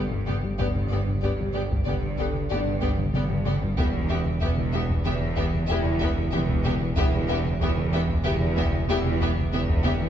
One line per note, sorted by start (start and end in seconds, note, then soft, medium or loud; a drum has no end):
0.00 0.52 G1 medium
0.00 0.59 G1 medium
0.00 0.52 G2 medium
0.00 1.51 A3 soft
0.00 1.52 A4 medium
0.11 0.21 G2 medium
0.11 taiko medium
0.26 0.37 G2 medium
0.26 0.36 B3 medium
0.26 0.35 G4 medium
0.26 0.34 D5 medium
0.26 taiko mid medium
0.43 0.53 G3 medium
0.58 3.80 G1 medium
0.58 1.16 G1 medium
0.58 0.69 G2 medium
0.58 1.16 G2 medium
0.58 0.82 B3 medium
0.58 0.68 B3 medium
0.58 0.82 D4 medium
0.58 0.66 G4 medium
0.58 0.66 D5 medium
0.58 taiko loud
0.75 0.85 G2 medium
0.75 taiko mid soft
0.90 1.01 G2 medium
0.90 0.99 B3 medium
0.90 0.99 G4 medium
0.90 0.98 D5 medium
1.07 1.17 G2 medium
1.07 taiko mid medium
1.23 1.80 G1 medium
1.23 1.33 G2 loud
1.23 1.80 G2 medium
1.23 3.10 G3 soft
1.23 1.32 B3 medium
1.23 3.11 G4 medium
1.23 1.31 G4 medium
1.23 1.31 D5 medium
1.23 taiko medium
1.39 1.49 G3 medium
1.39 taiko mid medium
1.53 1.65 G3 medium
1.53 1.63 B3 medium
1.53 1.63 G4 medium
1.53 1.61 D5 medium
1.71 1.81 G2 medium
1.71 taiko medium
1.85 2.44 G1 medium
1.85 2.43 G2 medium
1.85 1.97 G2 medium
1.85 1.95 B3 medium
1.85 1.95 G4 medium
1.85 1.93 D5 medium
1.85 taiko mid medium
2.03 2.13 G2 medium
2.03 taiko mid soft
2.17 2.28 G2 medium
2.17 2.27 B3 medium
2.17 2.27 G4 medium
2.17 4.07 A4 medium
2.17 2.25 D5 medium
2.17 taiko medium
2.34 2.44 G2 medium
2.34 taiko mid medium
2.50 3.07 G1 medium
2.50 3.07 G2 medium
2.50 2.60 G2 medium
2.50 2.74 B3 medium
2.50 2.60 B3 medium
2.50 2.74 D4 medium
2.50 2.59 G4 medium
2.50 2.58 D5 medium
2.66 2.76 G2 medium
2.66 taiko mid soft
2.82 2.92 G2 medium
2.82 2.91 B3 medium
2.82 2.90 G4 medium
2.82 2.90 D5 medium
2.82 taiko medium
2.98 3.08 G2 medium
2.98 taiko mid medium
3.14 3.71 G1 medium
3.14 3.71 G2 medium
3.14 3.24 G3 medium
3.14 3.23 B3 medium
3.14 3.23 G4 medium
3.14 3.23 D5 medium
3.14 taiko mid medium
3.30 3.40 G2 loud
3.30 taiko mid loud
3.46 3.56 G2 medium
3.46 3.55 B3 medium
3.46 3.55 G4 medium
3.46 3.54 D5 medium
3.46 taiko mid loud
3.62 3.72 G3 medium
3.62 taiko low loud
3.78 6.96 E1 medium
3.78 4.35 E1 medium
3.78 4.35 E2 medium
3.78 3.88 E2 medium
3.78 4.01 G3 medium
3.78 3.86 B3 medium
3.78 4.01 E4 medium
3.78 3.86 G4 medium
3.78 3.86 E5 medium
3.78 taiko loud
3.94 4.04 E2 medium
3.94 taiko mid medium
4.09 4.20 E2 medium
4.09 4.19 B3 medium
4.09 4.18 G4 medium
4.09 4.17 E5 medium
4.26 4.36 E2 medium
4.26 taiko mid medium
4.41 4.99 E1 medium
4.41 4.98 E2 medium
4.41 4.52 E2 loud
4.41 4.51 B3 medium
4.41 4.50 G4 medium
4.41 4.49 E5 medium
4.41 taiko medium
4.58 4.67 E3 medium
4.58 taiko mid soft
4.73 4.84 E3 medium
4.73 4.82 B3 medium
4.73 4.81 G4 medium
4.73 4.81 E5 medium
4.89 4.99 E2 loud
4.89 taiko medium
5.05 5.62 E1 medium
5.05 5.62 E2 medium
5.05 5.15 E2 medium
5.05 5.14 B3 medium
5.05 5.13 G4 medium
5.05 5.13 E5 medium
5.05 taiko mid medium
5.22 5.31 E2 medium
5.22 taiko mid soft
5.36 5.47 E2 medium
5.36 5.47 B3 medium
5.36 5.45 G4 medium
5.36 5.44 E5 medium
5.36 taiko medium
5.53 5.63 E2 medium
5.53 taiko mid medium
5.67 6.26 E1 medium
5.67 5.79 E2 medium
5.67 6.26 E2 loud
5.67 5.91 G3 medium
5.67 5.92 E4 medium
5.67 5.76 G4 medium
5.67 5.75 E5 medium
5.71 5.79 B3 medium
5.85 5.95 E2 medium
5.85 taiko mid medium
6.00 6.11 E2 loud
6.00 6.11 B3 medium
6.00 6.09 G4 medium
6.00 6.08 E5 medium
6.00 taiko medium
6.17 6.27 E2 medium
6.17 taiko mid medium
6.32 6.90 E1 medium
6.32 6.90 E2 medium
6.32 6.42 E3 medium
6.32 6.42 B3 medium
6.32 6.41 G4 medium
6.32 6.40 E5 medium
6.32 taiko mid medium
6.49 6.59 E2 loud
6.49 taiko medium
6.64 6.75 E2 medium
6.64 6.74 B3 medium
6.64 6.73 G4 medium
6.64 6.72 E5 medium
6.64 taiko mid medium
6.81 6.91 E3 medium
6.97 10.09 E1 medium
6.97 7.54 E1 loud
6.97 7.06 E2 loud
6.97 7.54 E2 loud
6.97 7.20 G3 medium
6.97 7.05 B3 medium
6.97 7.20 E4 medium
6.97 7.05 G4 medium
6.97 7.05 E5 medium
6.97 taiko loud
7.13 7.22 E2 medium
7.13 taiko mid medium
7.28 7.39 E2 medium
7.28 7.37 B3 medium
7.28 7.38 G4 medium
7.28 7.36 E5 medium
7.45 7.55 E2 medium
7.45 taiko mid medium
7.60 8.18 E1 loud
7.60 7.70 E2 loud
7.60 8.18 E2 medium
7.60 7.70 B3 medium
7.60 7.70 G4 medium
7.60 7.70 E5 medium
7.60 taiko medium
7.77 7.87 E3 medium
7.77 taiko mid medium
7.93 8.03 E3 medium
7.93 8.01 B3 medium
7.93 8.01 G4 medium
7.93 8.01 E5 medium
8.08 8.18 E2 loud
8.08 taiko medium
8.24 8.81 E1 medium
8.24 8.35 E2 medium
8.24 8.82 E2 loud
8.24 10.09 G3 medium
8.24 8.33 B3 medium
8.24 8.34 G4 medium
8.24 10.09 G4 medium
8.24 8.33 E5 medium
8.24 taiko mid medium
8.41 8.51 E2 medium
8.41 taiko mid medium
8.57 8.67 E2 loud
8.57 8.65 B3 medium
8.57 8.65 G4 medium
8.57 8.65 E5 medium
8.57 taiko medium
8.73 8.83 E2 medium
8.73 taiko mid medium
8.88 9.45 E1 medium
8.88 9.45 E2 medium
8.88 8.99 E2 medium
8.88 9.11 G3 medium
8.88 8.97 B3 medium
8.88 9.11 E4 medium
8.88 8.97 G4 medium
8.88 8.97 E5 medium
9.04 9.14 E2 medium
9.04 taiko mid medium
9.20 9.30 E2 loud
9.20 9.29 B3 medium
9.20 9.29 G4 medium
9.20 9.30 E5 medium
9.20 taiko medium
9.37 9.47 E2 medium
9.37 taiko mid medium
9.52 10.09 E1 medium
9.52 10.09 E2 medium
9.52 9.62 E3 medium
9.52 9.61 B3 medium
9.52 9.61 G4 medium
9.52 9.61 E5 medium
9.52 taiko mid medium
9.69 9.78 E2 loud
9.69 taiko medium
9.84 9.94 E2 medium
9.84 9.93 B3 medium
9.84 9.92 G4 medium
9.84 9.93 E5 medium
9.84 taiko mid medium
10.00 10.09 E3 medium